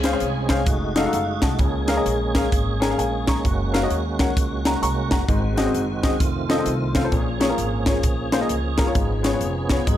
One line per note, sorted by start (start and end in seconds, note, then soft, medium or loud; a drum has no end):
0.00 0.14 C#2 medium
0.00 0.46 C#3 medium
0.00 5.24 G#3 medium
0.00 0.67 C4 medium
0.00 0.67 C#4 medium
0.00 0.09 C#4 medium
0.00 0.67 G#4 medium
0.00 0.10 G#4 medium
0.00 snare loud
0.00 closed hi-hat medium
0.04 0.10 C5 medium
0.04 0.10 F5 medium
0.12 0.26 C#4 medium
0.12 0.26 G#4 medium
0.12 0.26 C5 medium
0.12 0.26 F5 medium
0.20 0.61 C2 loud
0.20 closed hi-hat medium
0.48 0.61 C#4 medium
0.48 0.61 G#4 medium
0.48 0.61 C5 medium
0.48 0.61 F5 medium
0.48 kick medium
0.48 snare loud
0.48 closed hi-hat medium
0.66 1.06 F1 loud
0.66 1.59 A3 medium
0.66 1.59 D#4 medium
0.66 1.59 F#4 medium
0.66 kick loud
0.66 closed hi-hat medium
0.96 1.02 D#4 medium
0.96 1.02 F#4 medium
0.96 1.02 A4 medium
0.96 1.03 F5 medium
0.96 snare loud
0.96 closed hi-hat medium
1.04 1.18 D#4 medium
1.04 1.18 F#4 medium
1.04 1.18 A4 medium
1.04 1.13 F5 medium
1.13 1.38 F#1 medium
1.13 1.42 F5 medium
1.13 closed hi-hat medium
1.42 1.57 C2 medium
1.42 1.87 F#5 soft
1.42 1.86 A5 medium
1.42 kick medium
1.42 snare medium
1.42 closed hi-hat medium
1.59 1.99 C#2 loud
1.59 2.31 C#3 medium
1.59 5.25 A#3 medium
1.59 5.25 C#4 medium
1.59 3.43 G#4 medium
1.59 kick loud
1.59 closed hi-hat medium
1.87 1.94 C#4 medium
1.87 1.94 G#4 medium
1.87 1.94 A#4 medium
1.87 1.94 F5 medium
1.87 snare loud
1.87 closed hi-hat medium
1.96 2.10 C#4 medium
1.96 2.10 G#4 medium
1.96 2.10 A#4 medium
1.96 2.10 D#5 medium
2.06 2.45 A#1 medium
2.06 closed hi-hat medium
2.34 2.46 C#4 medium
2.34 2.46 G#4 medium
2.34 2.46 A#4 medium
2.34 2.47 F5 medium
2.34 kick medium
2.34 snare loud
2.34 closed hi-hat medium
2.52 2.91 G#1 medium
2.52 kick loud
2.52 closed hi-hat medium
2.80 2.86 C#4 medium
2.80 2.87 G#4 medium
2.80 2.87 A#4 medium
2.80 2.87 G#5 medium
2.80 snare loud
2.80 closed hi-hat medium
2.89 3.03 C#4 medium
2.89 3.03 G#4 medium
2.89 3.03 A#4 medium
2.89 2.98 F5 medium
2.98 3.37 A#1 medium
2.98 3.26 F5 soft
2.98 3.26 G#5 medium
2.98 closed hi-hat medium
3.27 3.72 A#5 medium
3.27 3.72 C#6 medium
3.27 kick medium
3.27 snare loud
3.27 closed hi-hat medium
3.45 3.84 F#1 loud
3.45 5.27 F#4 medium
3.45 kick loud
3.45 closed hi-hat medium
3.72 3.78 C#4 medium
3.72 3.79 F#4 medium
3.72 3.79 A#4 medium
3.72 3.79 F5 medium
3.72 snare loud
3.72 closed hi-hat medium
3.82 3.95 C#4 medium
3.82 3.95 F#4 medium
3.82 3.95 A#4 medium
3.82 3.96 D#5 medium
3.90 4.29 D#2 medium
3.90 closed hi-hat medium
4.19 4.30 C#4 medium
4.19 4.31 F#4 medium
4.19 4.31 A#4 medium
4.19 4.31 F#5 medium
4.19 kick loud
4.19 snare loud
4.19 closed hi-hat medium
4.37 4.76 C#2 medium
4.37 kick loud
4.37 closed hi-hat loud
4.65 4.82 F#5 medium
4.65 4.81 A#5 medium
4.65 snare loud
4.65 closed hi-hat medium
4.82 5.07 C2 medium
4.82 5.10 A#5 medium
4.82 5.10 C#6 medium
4.82 closed hi-hat medium
5.11 5.26 F#1 medium
5.11 5.55 F#5 medium
5.11 5.55 A#5 medium
5.11 kick medium
5.11 snare loud
5.11 closed hi-hat medium
5.28 5.67 G#1 loud
5.28 5.99 G#2 medium
5.28 7.11 D#3 medium
5.28 6.20 G#3 medium
5.28 7.11 C4 medium
5.28 6.20 F#4 medium
5.28 kick loud
5.28 closed hi-hat medium
5.57 5.63 C4 medium
5.57 5.63 F#4 medium
5.57 5.63 G#4 medium
5.57 5.63 D#5 medium
5.57 snare loud
5.57 closed hi-hat medium
5.65 5.79 C4 medium
5.65 5.79 F#4 medium
5.65 5.79 G#4 medium
5.65 5.79 D#5 medium
5.74 6.13 F#1 medium
5.74 closed hi-hat medium
6.03 6.14 C4 medium
6.03 6.14 F#4 medium
6.03 6.14 G#4 medium
6.03 6.15 D#5 medium
6.03 kick medium
6.03 snare loud
6.03 closed hi-hat medium
6.20 6.59 F1 medium
6.20 7.11 A3 medium
6.20 7.11 F4 medium
6.20 kick loud
6.20 closed hi-hat medium
6.49 6.55 C4 medium
6.49 6.55 F4 medium
6.49 6.55 A4 medium
6.49 6.55 D#5 medium
6.49 snare loud
6.49 closed hi-hat medium
6.58 6.71 C4 medium
6.58 6.71 F4 medium
6.58 6.71 A4 medium
6.58 6.71 D#5 medium
6.66 7.05 C2 medium
6.66 closed hi-hat medium
6.94 7.00 C4 medium
6.94 7.01 F4 medium
6.94 7.01 A4 medium
6.94 7.01 F5 medium
6.94 kick medium
6.94 snare loud
6.94 closed hi-hat medium
7.03 7.12 C4 medium
7.03 7.12 F4 medium
7.03 7.12 A4 medium
7.03 7.12 C5 medium
7.11 7.51 A#1 medium
7.11 7.83 A#2 medium
7.11 8.95 F3 medium
7.11 8.94 A#3 soft
7.11 9.86 C#4 medium
7.11 9.97 G#4 medium
7.11 kick medium
7.11 closed hi-hat medium
7.40 7.46 A#3 medium
7.40 7.46 F4 medium
7.40 7.46 G#4 medium
7.40 7.47 C#5 medium
7.40 snare medium
7.40 closed hi-hat medium
7.49 7.62 A#3 medium
7.49 7.62 F4 medium
7.49 7.63 G#4 medium
7.49 7.63 A#4 medium
7.58 7.97 G#1 medium
7.58 closed hi-hat medium
7.86 7.98 A#3 medium
7.86 7.98 F4 medium
7.86 7.98 G#4 medium
7.86 7.98 C#5 medium
7.86 kick medium
7.86 snare loud
7.86 closed hi-hat medium
8.03 8.43 A#1 medium
8.03 kick loud
8.03 closed hi-hat medium
8.32 8.38 A#3 medium
8.32 8.38 F4 medium
8.32 8.39 G#4 medium
8.32 8.39 C5 medium
8.32 snare loud
8.32 closed hi-hat medium
8.40 8.54 A#3 medium
8.40 8.54 F4 medium
8.40 8.54 G#4 medium
8.40 8.54 D#5 medium
8.49 8.75 C#2 medium
8.49 closed hi-hat medium
8.78 8.93 F#1 medium
8.78 8.84 A#3 medium
8.78 8.84 F4 medium
8.78 8.84 G#4 medium
8.78 8.84 A#4 medium
8.78 kick loud
8.78 snare loud
8.78 closed hi-hat medium
8.86 8.95 A#3 medium
8.86 8.95 F4 medium
8.86 8.96 G#4 medium
8.86 8.96 C#5 medium
8.94 9.35 G#1 medium
8.94 9.66 G#2 medium
8.94 9.87 F3 medium
8.94 9.97 B3 medium
8.94 kick loud
8.94 closed hi-hat medium
9.23 9.29 B3 medium
9.23 9.30 F4 medium
9.23 9.30 G#4 medium
9.23 9.30 C#5 medium
9.23 snare loud
9.23 closed hi-hat medium
9.32 9.46 B3 medium
9.32 9.46 F4 medium
9.32 9.46 G#4 medium
9.32 9.46 C#5 medium
9.41 9.80 F1 loud
9.41 closed hi-hat medium
9.69 9.81 B3 medium
9.69 9.82 F4 medium
9.69 9.82 G#4 medium
9.69 9.82 C#5 medium
9.69 kick medium
9.69 snare loud
9.69 closed hi-hat medium
9.86 9.97 G#1 loud
9.86 9.97 G#2 medium
9.86 9.97 F#3 medium
9.86 9.97 D#4 medium
9.86 kick loud
9.86 closed hi-hat medium